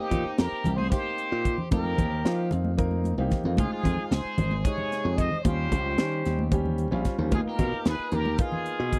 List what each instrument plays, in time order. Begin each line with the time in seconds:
Already playing: grand piano A#3 C4 D#4 G4, muted trumpet G4
0.00 overdriven electric guitar D#4
0.11 slap bass A#2, kick, closed hi-hat, low conga
0.25 muted slap bass stroke, low conga
0.38 slap bass F2, overdriven electric guitar G4, muted trumpet A#4, snare, closed hi-hat, low conga
0.52 muted slap bass stroke
0.64 slap bass C2, closed hi-hat, low conga
0.76 overdriven electric guitar G#4, muted trumpet C5, high conga
0.90 grand piano A#3 C4 D#4 G4, overdriven electric guitar G4, muted trumpet C5, kick, snare, closed hi-hat
1.18 closed hi-hat
1.32 slap bass A#2
1.45 kick, closed hi-hat
1.58 low conga
1.71 slap bass F2, grand piano A#3 C4 D#4 A#4, overdriven electric guitar G4, muted trumpet A#4, kick, closed hi-hat, high conga
1.85 low conga
1.98 slap bass D#2, kick, closed hi-hat, low conga
2.12 low conga
2.24 slap bass F3, grand piano A#3 C4 D#4 F4, snare, closed hi-hat
2.51 slap bass F2, closed hi-hat, low conga
2.64 high conga
2.77 grand piano A#3 C4 D#4 A#4, kick, closed hi-hat
2.91 high conga
3.04 closed hi-hat, high conga
3.18 slap bass C2, grand piano A#3 C4 D#4 G4, high conga
3.30 kick, snare, closed hi-hat, low conga
3.44 slap bass F2, grand piano A#3 C4 D#4 F4, low conga
3.57 slap bass C#2, grand piano G#3 C4 D#4 F4, overdriven electric guitar F4, muted trumpet G#4, kick, closed hi-hat, high conga
3.73 overdriven electric guitar F4, muted trumpet G#4
3.83 slap bass F2, kick, closed hi-hat, low conga
3.97 muted slap bass stroke, low conga
4.10 slap bass C#2, overdriven electric guitar G#4, muted trumpet C5, snare, closed hi-hat, low conga
4.25 muted slap bass stroke
4.38 slap bass G#1, closed hi-hat, low conga
4.51 high conga
4.64 grand piano C3 G#3 D#4 G#4, overdriven electric guitar G#4, muted trumpet C#5, kick, closed hi-hat
4.78 low conga
4.92 snare, closed hi-hat
5.05 slap bass F2
5.17 overdriven electric guitar C5, muted trumpet D#5, kick, closed hi-hat
5.31 low conga
5.43 slap bass D#2, grand piano G3 C4 C#4 F4, muted trumpet C5, kick, closed hi-hat, high conga
5.47 overdriven electric guitar G4
5.72 slap bass C#2, kick, closed hi-hat, low conga
5.85 low conga
5.97 slap bass D#3, grand piano G3 C4 C#4 G4, snare, closed hi-hat, low conga
6.26 slap bass D#2, snare, closed hi-hat
6.39 high conga
6.51 grand piano G3 C4 C#4 G4, kick, closed hi-hat
6.66 low conga
6.78 closed hi-hat
6.91 slap bass A#1, grand piano G3 C4 C#4 F4
7.05 kick, snare, closed hi-hat
7.18 slap bass D#2, grand piano G3 C4 C#4 F4, low conga
7.30 slap bass D#2, grand piano A#3 B3 D#4 F4, muted trumpet G#4, kick, closed hi-hat, high conga
7.35 overdriven electric guitar F4
7.46 overdriven electric guitar G4, muted trumpet A#4, muted slap bass stroke
7.59 slap bass B2, kick, closed hi-hat, low conga
7.72 muted slap bass stroke, low conga
7.85 slap bass D#2, overdriven electric guitar G#4, muted trumpet B4, snare, closed hi-hat, low conga
7.99 muted slap bass stroke
8.12 slap bass D#2, overdriven electric guitar G4, muted trumpet A#4, closed hi-hat, low conga
8.26 high conga
8.38 grand piano A#3 B3 D#4 F4, overdriven electric guitar F4, muted trumpet G#4, kick, closed hi-hat
8.52 low conga
8.66 closed hi-hat
8.80 slap bass B2
8.93 kick, closed hi-hat